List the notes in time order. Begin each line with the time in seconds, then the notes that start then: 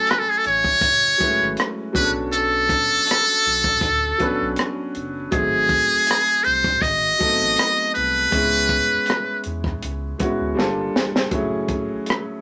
Already playing: F#3 A3 C#4 E4 A4 G#5
0.07 B4, cross-stick, closed hi-hat
0.19 A4
0.30 G#4
0.38 A4
0.44 A1 C#5, closed hi-hat
0.64 kick
0.81 F#1, kick, closed hi-hat
1.18 F#3 G#3 C#4 E4, kick, closed hi-hat
1.22 A3 B4
1.41 G#1, cross-stick
1.57 cross-stick, closed hi-hat
1.93 B1 F#3 B3 C#4 D4 B4, kick, closed hi-hat
1.97 G#4
2.03 A4
2.32 A4, closed hi-hat
2.69 kick, closed hi-hat
2.91 B1
3.07 cross-stick, closed hi-hat
3.44 B1, closed hi-hat
3.64 kick
3.81 D2, kick, closed hi-hat
4.18 F#3 B3 C#4 D4, kick, closed hi-hat
4.22 B4
4.42 B1
4.56 cross-stick, closed hi-hat
4.95 F#1, closed hi-hat
5.31 G#1 F#3 A3 C4 D#4 G#4, kick, closed hi-hat
5.69 kick, closed hi-hat
5.91 C2
6.07 cross-stick, closed hi-hat
6.44 C2 C5, closed hi-hat
6.64 kick, cross-stick
6.82 G#1 D#5, kick, closed hi-hat
7.19 F#3 A3 B3 D#4, kick, closed hi-hat
7.23 A4
7.27 C4
7.41 A1
7.57 cross-stick, closed hi-hat
7.95 C2 B4, closed hi-hat
8.31 C#2 G#3 B3 C#4 E4 G#4, kick, closed hi-hat
8.69 kick, closed hi-hat
8.92 E2
9.06 cross-stick, closed hi-hat
9.44 E2, closed hi-hat
9.64 kick, cross-stick
9.83 C#2, closed hi-hat
10.18 G#3 B3 C#4 E4 F#4, kick, cross-stick, closed hi-hat
10.41 D2
10.55 G1 G3 A#3 D4 F4
10.59 A4, snare
10.96 E1, snare
11.16 snare
11.31 F#1 F#3 A3 C#4 E4 G#4, kick, closed hi-hat
11.68 kick, closed hi-hat
11.91 A1
12.06 cross-stick, closed hi-hat